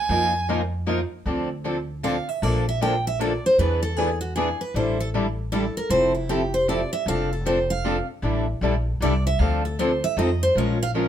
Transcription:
Already playing: G#5
0.09 F2 F3 A#3 D#4 F4 A#4
0.49 F3 A#3 D#4 F4 A#4
0.88 F3 A#3 D#4 F4 A#4
1.26 D2 D3 F3 C4 D4 A4
1.65 D3 F3 C4 D4 A4
2.03 D3 F3 C4 D4 A4 F5
2.29 E5
2.42 A#1 D3 F3 A#3 D4 A4 D5
2.69 E5
2.82 D3 F3 A#3 D4 A4 G5
3.07 E5
3.19 D3 F3 A#3 D4 A4 D5
3.46 C5
3.58 E2 E3 B3 D4 G#4 B4
3.83 A4
3.97 E3 B3 D4 G#4 B4
4.21 F#4
4.36 E3 B3 D4 G#4 B4
4.61 B4
4.74 A1 D3 G3 D4 E4 A4 C5
5.00 A4
5.14 D3 G3 D4 E4 A4
5.52 D3 G3 D4 E4 A4
5.77 A#4
5.90 F1 F3 C4 E4 A4 C5
6.15 E4
6.29 F3 C4 E4 G4 A4
6.54 C5
6.69 F3 C4 E4 A4 D5
6.93 E5
7.06 F1 F3 C4 D4 A4 F5
7.33 A4
7.46 F3 C4 D4 A4 C5
7.70 F5
7.84 F3 C4 D4 A4
8.22 A1 D3 G3 D4 E4 A4
8.61 A#1 D3 G3 D4 E4 A4
9.01 C2 D3 G3 D4 E4 A4 D5
9.27 E5
9.39 D2 D3 F3 C4 D4 A4 F5
9.65 A4
9.79 D3 F3 C4 D4 A4 C5
10.04 E5
10.17 F2 F3 C4 D#4 A4 D#5
10.43 C5
10.55 A#1 F3 G#3 C#4 F4 A#4 C#5
10.83 F5
10.94 F3 G#3 C#4 F4 A#4

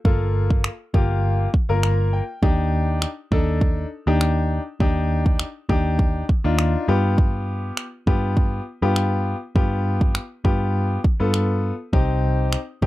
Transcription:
0.05 G1 A#3 F4 A4, kick
0.50 kick
0.64 finger snap
0.94 G1 A#3 F4 G4, kick
1.54 kick
1.69 G1 A#3 F4 A#4
1.83 A#5, finger snap
2.13 G5
2.43 D#2 D4 D#4 G4, kick
3.02 finger snap
3.32 D#2 D4 D#4 A4, kick
3.61 kick
4.07 D#2 D4 D#4 G4
4.21 finger snap
4.80 D#2 D4 D#4 G4, kick
5.26 kick
5.39 finger snap
5.69 D#2 D4 D#4 G4, kick
5.99 kick
6.29 kick
6.44 D#2 D4 D#4 F4
6.59 finger snap
6.88 G2 B3 F4 G4
7.18 kick
7.77 finger snap
8.07 G2 B3 F4 G4, kick
8.37 kick
8.82 G2 B3 F4 G4
8.96 finger snap
9.55 G2 B3 F4 G4, kick
10.01 kick
10.15 finger snap
10.44 G2 B3 F4 G4, kick
11.04 kick
11.20 G2 B3 F4 A4
11.34 finger snap
11.93 C2 C4 D#4 G4, kick
12.53 finger snap
12.82 C2 C4 D#4 G4, kick

